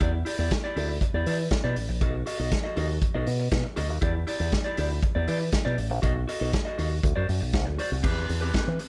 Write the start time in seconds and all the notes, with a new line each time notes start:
0.00 E2 E4 G4 D5, kick, closed hi-hat
0.13 muted clean electric guitar stroke
0.25 E4 G4 D5, open hi-hat
0.38 E2 E4 G4 D5
0.51 muted clean electric guitar stroke, kick, snare, closed hi-hat
0.64 E4 G4 D5
0.76 D2 E4 G4 D5, open hi-hat
0.89 muted clean electric guitar stroke
1.01 muted clean electric guitar stroke, kick, closed hi-hat
1.14 E2 E4 G4 D5
1.26 E3 E4 G4 D5, open hi-hat
1.39 muted clean electric guitar stroke
1.51 muted clean electric guitar stroke, kick, snare, closed hi-hat
1.64 B2 E4 G4 D5
1.76 A1, muted clean electric guitar stroke, open hi-hat
1.89 A#1, muted clean electric guitar stroke
2.01 B1 F#4 A4 D#5, kick, closed hi-hat
2.14 muted clean electric guitar stroke
2.26 F#4 A4 D#5, open hi-hat
2.39 B1 F#4 A4 D#5
2.51 muted clean electric guitar stroke, kick, snare, closed hi-hat
2.64 F#4 A4 D#5
2.76 D#2 F#4 A4 D#5, open hi-hat
2.89 muted clean electric guitar stroke
3.02 muted clean electric guitar stroke, kick, closed hi-hat
3.14 B1 F#4 A4 D#5
3.26 B2, muted clean electric guitar stroke, open hi-hat
3.40 muted clean electric guitar stroke
3.51 B2, muted clean electric guitar stroke, kick, snare, closed hi-hat
3.64 muted clean electric guitar stroke
3.76 D2 F#4 A4 D#5, open hi-hat
3.89 D#2, muted clean electric guitar stroke
4.01 E2 E4 G4 D5, kick, closed hi-hat
4.15 muted clean electric guitar stroke
4.27 E4 G4 D5, open hi-hat
4.40 E2 E4 G4 D5
4.52 muted clean electric guitar stroke, kick, snare, closed hi-hat
4.64 E4 G4 D5
4.77 D2 E4 G4 D5, open hi-hat
4.90 muted clean electric guitar stroke
5.03 muted clean electric guitar stroke, kick, closed hi-hat
5.15 E2 E4 G4 D5
5.28 E3 E4 G4 D5, open hi-hat
5.40 muted clean electric guitar stroke
5.52 muted clean electric guitar stroke, kick, snare, closed hi-hat
5.65 B2 E4 G4 D5
5.78 A1, muted clean electric guitar stroke, open hi-hat
5.90 A#1, muted clean electric guitar stroke
6.02 B1 F#4 A4 D#5, kick, closed hi-hat
6.14 muted clean electric guitar stroke
6.28 F#4 A4 D#5, open hi-hat
6.40 B1 F#4 A4 D#5
6.52 muted clean electric guitar stroke, kick, snare, closed hi-hat
6.65 F#4 A4 D#5
6.78 D#2 F#4 A4 D#5, open hi-hat
6.90 muted clean electric guitar stroke
7.03 D2, muted clean electric guitar stroke, kick, closed hi-hat
7.16 F#2 F#4 C5 D5
7.28 F#2, muted clean electric guitar stroke, open hi-hat
7.41 B1, muted clean electric guitar stroke
7.53 C2, muted clean electric guitar stroke, kick, snare, closed hi-hat
7.66 D2, muted clean electric guitar stroke
7.78 F#4 C5 D5, open hi-hat
7.91 C2, muted clean electric guitar stroke
8.03 E2 C4 G4 B4, kick, crash
8.29 E2, muted clean electric guitar stroke, open hi-hat
8.41 C4 G4 B4
8.53 C4 G4 B4, kick, snare, closed hi-hat
8.67 E3, muted clean electric guitar stroke
8.79 muted clean electric guitar stroke, open hi-hat